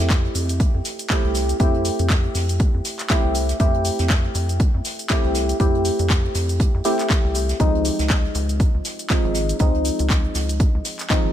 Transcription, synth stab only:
0, 0, Header, 1, 2, 480
1, 0, Start_track
1, 0, Key_signature, -1, "major"
1, 0, Tempo, 500000
1, 1535, Time_signature, 4, 2, 24, 8
1, 10873, End_track
2, 0, Start_track
2, 0, Title_t, "Synth stab"
2, 0, Program_c, 0, 62
2, 0, Note_on_c, 0, 57, 92
2, 0, Note_on_c, 0, 60, 86
2, 0, Note_on_c, 0, 64, 86
2, 0, Note_on_c, 0, 67, 96
2, 1029, Note_off_c, 0, 57, 0
2, 1030, Note_off_c, 0, 60, 0
2, 1030, Note_off_c, 0, 64, 0
2, 1031, Note_off_c, 0, 67, 0
2, 1054, Note_on_c, 0, 57, 83
2, 1054, Note_on_c, 0, 60, 77
2, 1055, Note_on_c, 0, 64, 78
2, 1055, Note_on_c, 0, 67, 98
2, 1510, Note_off_c, 0, 57, 0
2, 1510, Note_off_c, 0, 60, 0
2, 1511, Note_off_c, 0, 64, 0
2, 1511, Note_off_c, 0, 67, 0
2, 1533, Note_on_c, 0, 57, 89
2, 1534, Note_on_c, 0, 60, 85
2, 1535, Note_on_c, 0, 64, 84
2, 1536, Note_on_c, 0, 67, 102
2, 2950, Note_off_c, 0, 57, 0
2, 2950, Note_off_c, 0, 60, 0
2, 2950, Note_off_c, 0, 64, 0
2, 2951, Note_off_c, 0, 67, 0
2, 2973, Note_on_c, 0, 57, 83
2, 2974, Note_on_c, 0, 60, 77
2, 2974, Note_on_c, 0, 64, 79
2, 2974, Note_on_c, 0, 67, 89
2, 3430, Note_off_c, 0, 57, 0
2, 3430, Note_off_c, 0, 60, 0
2, 3430, Note_off_c, 0, 64, 0
2, 3430, Note_off_c, 0, 67, 0
2, 3453, Note_on_c, 0, 57, 92
2, 3454, Note_on_c, 0, 60, 87
2, 3455, Note_on_c, 0, 64, 82
2, 3456, Note_on_c, 0, 67, 101
2, 4869, Note_off_c, 0, 57, 0
2, 4870, Note_off_c, 0, 60, 0
2, 4871, Note_off_c, 0, 64, 0
2, 4871, Note_off_c, 0, 67, 0
2, 4894, Note_on_c, 0, 57, 84
2, 4894, Note_on_c, 0, 60, 79
2, 4895, Note_on_c, 0, 64, 77
2, 4896, Note_on_c, 0, 67, 97
2, 5350, Note_off_c, 0, 57, 0
2, 5350, Note_off_c, 0, 60, 0
2, 5350, Note_off_c, 0, 64, 0
2, 5351, Note_off_c, 0, 67, 0
2, 5373, Note_on_c, 0, 57, 92
2, 5374, Note_on_c, 0, 60, 82
2, 5375, Note_on_c, 0, 64, 83
2, 5376, Note_on_c, 0, 67, 103
2, 6554, Note_off_c, 0, 57, 0
2, 6554, Note_off_c, 0, 60, 0
2, 6555, Note_off_c, 0, 64, 0
2, 6555, Note_off_c, 0, 67, 0
2, 6574, Note_on_c, 0, 57, 81
2, 6575, Note_on_c, 0, 60, 74
2, 6576, Note_on_c, 0, 64, 78
2, 6577, Note_on_c, 0, 67, 95
2, 7270, Note_off_c, 0, 57, 0
2, 7270, Note_off_c, 0, 60, 0
2, 7271, Note_off_c, 0, 64, 0
2, 7271, Note_off_c, 0, 67, 0
2, 7293, Note_on_c, 0, 53, 90
2, 7294, Note_on_c, 0, 56, 85
2, 7295, Note_on_c, 0, 60, 84
2, 7296, Note_on_c, 0, 63, 103
2, 8710, Note_off_c, 0, 53, 0
2, 8710, Note_off_c, 0, 56, 0
2, 8711, Note_off_c, 0, 60, 0
2, 8711, Note_off_c, 0, 63, 0
2, 8734, Note_on_c, 0, 53, 88
2, 8734, Note_on_c, 0, 56, 75
2, 8735, Note_on_c, 0, 60, 76
2, 8735, Note_on_c, 0, 63, 96
2, 9190, Note_off_c, 0, 53, 0
2, 9190, Note_off_c, 0, 56, 0
2, 9190, Note_off_c, 0, 60, 0
2, 9191, Note_off_c, 0, 63, 0
2, 9214, Note_on_c, 0, 53, 86
2, 9215, Note_on_c, 0, 56, 83
2, 9216, Note_on_c, 0, 60, 85
2, 9218, Note_on_c, 0, 63, 102
2, 10630, Note_off_c, 0, 53, 0
2, 10630, Note_off_c, 0, 56, 0
2, 10631, Note_off_c, 0, 60, 0
2, 10632, Note_off_c, 0, 63, 0
2, 10654, Note_on_c, 0, 53, 87
2, 10655, Note_on_c, 0, 56, 78
2, 10655, Note_on_c, 0, 60, 80
2, 10656, Note_on_c, 0, 63, 93
2, 10873, Note_off_c, 0, 53, 0
2, 10873, Note_off_c, 0, 56, 0
2, 10873, Note_off_c, 0, 60, 0
2, 10873, Note_off_c, 0, 63, 0
2, 10873, End_track
0, 0, End_of_file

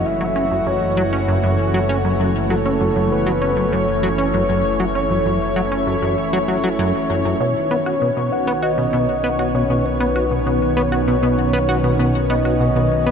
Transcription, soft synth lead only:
0, 0, Header, 1, 2, 480
1, 0, Start_track
1, 0, Tempo, 612245
1, 43, Time_signature, 4, 2, 24, 8
1, 10280, End_track
2, 0, Start_track
2, 0, Title_t, "Soft synth lead"
2, 0, Program_c, 0, 80
2, 45, Note_on_c, 0, 76, 101
2, 523, Note_on_c, 0, 73, 91
2, 535, Note_off_c, 0, 76, 0
2, 1723, Note_off_c, 0, 73, 0
2, 1965, Note_on_c, 0, 69, 98
2, 2413, Note_off_c, 0, 69, 0
2, 2444, Note_on_c, 0, 71, 106
2, 2922, Note_on_c, 0, 73, 110
2, 2934, Note_off_c, 0, 71, 0
2, 5323, Note_off_c, 0, 73, 0
2, 5803, Note_on_c, 0, 73, 104
2, 6524, Note_on_c, 0, 78, 110
2, 6536, Note_off_c, 0, 73, 0
2, 6763, Note_on_c, 0, 75, 107
2, 6775, Note_off_c, 0, 78, 0
2, 7482, Note_off_c, 0, 75, 0
2, 7486, Note_on_c, 0, 73, 89
2, 7723, Note_on_c, 0, 71, 95
2, 7735, Note_off_c, 0, 73, 0
2, 8683, Note_off_c, 0, 71, 0
2, 9644, Note_on_c, 0, 75, 101
2, 10280, Note_off_c, 0, 75, 0
2, 10280, End_track
0, 0, End_of_file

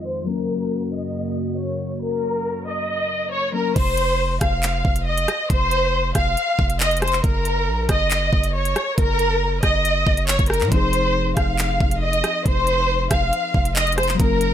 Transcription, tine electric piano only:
0, 0, Header, 1, 2, 480
1, 0, Start_track
1, 0, Tempo, 434783
1, 312, Time_signature, 4, 2, 24, 8
1, 16049, End_track
2, 0, Start_track
2, 0, Title_t, "Tine electric piano"
2, 0, Program_c, 0, 4
2, 0, Control_c, 0, 64, 127
2, 0, Note_on_c, 0, 53, 58
2, 0, Note_on_c, 0, 60, 57
2, 0, Note_on_c, 0, 63, 61
2, 0, Note_on_c, 0, 68, 65
2, 246, Note_off_c, 0, 53, 0
2, 261, Note_off_c, 0, 60, 0
2, 268, Note_on_c, 0, 54, 62
2, 277, Note_off_c, 0, 63, 0
2, 293, Note_off_c, 0, 68, 0
2, 299, Note_on_c, 0, 58, 61
2, 326, Control_c, 0, 64, 0
2, 330, Note_on_c, 0, 61, 54
2, 362, Note_on_c, 0, 70, 70
2, 490, Control_c, 0, 64, 127
2, 3846, Note_off_c, 0, 54, 0
2, 3861, Note_off_c, 0, 58, 0
2, 3877, Note_off_c, 0, 61, 0
2, 3891, Note_on_c, 0, 54, 46
2, 3893, Note_off_c, 0, 70, 0
2, 3906, Note_on_c, 0, 58, 45
2, 3922, Note_on_c, 0, 61, 45
2, 3937, Note_on_c, 0, 70, 57
2, 4141, Note_off_c, 0, 54, 0
2, 4149, Note_off_c, 0, 58, 0
2, 4157, Note_off_c, 0, 61, 0
2, 4165, Note_off_c, 0, 70, 0
2, 4165, Control_c, 0, 64, 0
2, 4378, Control_c, 0, 64, 127
2, 8008, Control_c, 0, 64, 0
2, 11791, Note_on_c, 0, 53, 62
2, 11822, Note_on_c, 0, 60, 55
2, 11854, Note_on_c, 0, 63, 58
2, 11885, Note_on_c, 0, 68, 69
2, 12027, Control_c, 0, 64, 127
2, 15607, Note_off_c, 0, 53, 0
2, 15620, Note_on_c, 0, 54, 69
2, 15623, Note_off_c, 0, 60, 0
2, 15639, Note_off_c, 0, 63, 0
2, 15652, Note_on_c, 0, 58, 58
2, 15654, Note_off_c, 0, 68, 0
2, 15683, Note_on_c, 0, 61, 56
2, 15687, Control_c, 0, 64, 0
2, 15714, Note_on_c, 0, 70, 67
2, 15894, Control_c, 0, 64, 127
2, 16049, Note_off_c, 0, 54, 0
2, 16049, Note_off_c, 0, 58, 0
2, 16049, Note_off_c, 0, 61, 0
2, 16049, Note_off_c, 0, 70, 0
2, 16049, End_track
0, 0, End_of_file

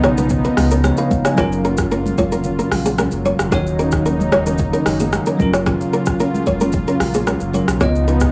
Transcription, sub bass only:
0, 0, Header, 1, 2, 480
1, 0, Start_track
1, 0, Key_signature, 6, "major"
1, 0, Tempo, 535714
1, 1235, Time_signature, 4, 2, 24, 8
1, 7452, End_track
2, 0, Start_track
2, 0, Title_t, "Sub bass"
2, 0, Program_c, 0, 38
2, 34, Note_on_c, 0, 35, 92
2, 430, Note_off_c, 0, 35, 0
2, 513, Note_on_c, 0, 37, 94
2, 815, Note_off_c, 0, 37, 0
2, 1234, Note_on_c, 0, 30, 108
2, 1918, Note_off_c, 0, 30, 0
2, 1955, Note_on_c, 0, 29, 89
2, 2350, Note_off_c, 0, 29, 0
2, 2434, Note_on_c, 0, 34, 94
2, 2735, Note_off_c, 0, 34, 0
2, 2799, Note_on_c, 0, 30, 89
2, 2997, Note_off_c, 0, 30, 0
2, 3040, Note_on_c, 0, 29, 88
2, 3134, Note_off_c, 0, 29, 0
2, 3155, Note_on_c, 0, 27, 112
2, 3839, Note_off_c, 0, 27, 0
2, 3875, Note_on_c, 0, 27, 86
2, 4270, Note_off_c, 0, 27, 0
2, 4354, Note_on_c, 0, 30, 97
2, 4655, Note_off_c, 0, 30, 0
2, 4837, Note_on_c, 0, 30, 101
2, 5231, Note_off_c, 0, 30, 0
2, 5796, Note_on_c, 0, 29, 93
2, 6191, Note_off_c, 0, 29, 0
2, 6276, Note_on_c, 0, 34, 94
2, 6576, Note_off_c, 0, 34, 0
2, 6640, Note_on_c, 0, 30, 92
2, 6838, Note_off_c, 0, 30, 0
2, 6880, Note_on_c, 0, 35, 92
2, 6975, Note_off_c, 0, 35, 0
2, 6996, Note_on_c, 0, 37, 105
2, 7452, Note_off_c, 0, 37, 0
2, 7452, End_track
0, 0, End_of_file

